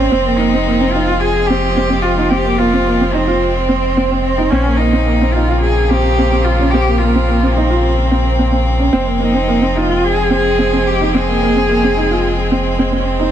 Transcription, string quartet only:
0, 0, Header, 1, 2, 480
1, 0, Start_track
1, 0, Key_signature, -4, "minor"
1, 0, Tempo, 550459
1, 103, Time_signature, 4, 2, 24, 8
1, 11611, End_track
2, 0, Start_track
2, 0, Title_t, "String quartet"
2, 0, Program_c, 0, 48
2, 0, Note_on_c, 0, 56, 73
2, 0, Note_on_c, 0, 60, 93
2, 110, Note_on_c, 0, 53, 82
2, 3911, Note_off_c, 0, 60, 0
2, 3912, Note_off_c, 0, 53, 0
2, 3912, Note_off_c, 0, 56, 0
2, 3930, Note_on_c, 0, 58, 80
2, 3934, Note_on_c, 0, 49, 80
2, 3935, Note_on_c, 0, 60, 93
2, 7742, Note_off_c, 0, 58, 0
2, 7744, Note_off_c, 0, 49, 0
2, 7781, Note_on_c, 0, 53, 83
2, 7785, Note_on_c, 0, 56, 79
2, 11587, Note_off_c, 0, 53, 0
2, 11611, Note_off_c, 0, 56, 0
2, 11611, Note_off_c, 0, 60, 0
2, 11611, End_track
0, 0, End_of_file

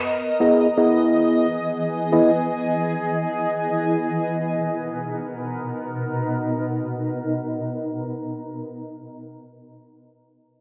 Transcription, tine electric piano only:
0, 0, Header, 1, 2, 480
1, 0, Start_track
1, 0, Key_signature, 5, "major"
1, 0, Tempo, 500000
1, 10184, End_track
2, 0, Start_track
2, 0, Title_t, "Tine electric piano"
2, 0, Program_c, 0, 4
2, 385, Note_on_c, 0, 59, 85
2, 388, Note_on_c, 0, 64, 76
2, 390, Note_on_c, 0, 68, 71
2, 391, Note_on_c, 0, 75, 95
2, 632, Note_off_c, 0, 59, 0
2, 634, Note_off_c, 0, 64, 0
2, 635, Note_off_c, 0, 68, 0
2, 635, Note_off_c, 0, 75, 0
2, 741, Note_on_c, 0, 59, 83
2, 741, Note_on_c, 0, 64, 78
2, 744, Note_on_c, 0, 68, 75
2, 745, Note_on_c, 0, 75, 89
2, 1396, Note_off_c, 0, 59, 0
2, 1397, Note_off_c, 0, 64, 0
2, 1398, Note_off_c, 0, 68, 0
2, 1399, Note_off_c, 0, 75, 0
2, 2038, Note_on_c, 0, 59, 81
2, 2039, Note_on_c, 0, 64, 73
2, 2040, Note_on_c, 0, 68, 70
2, 2042, Note_on_c, 0, 75, 86
2, 2203, Note_off_c, 0, 59, 0
2, 2203, Note_off_c, 0, 64, 0
2, 2204, Note_off_c, 0, 68, 0
2, 2205, Note_off_c, 0, 75, 0
2, 10184, End_track
0, 0, End_of_file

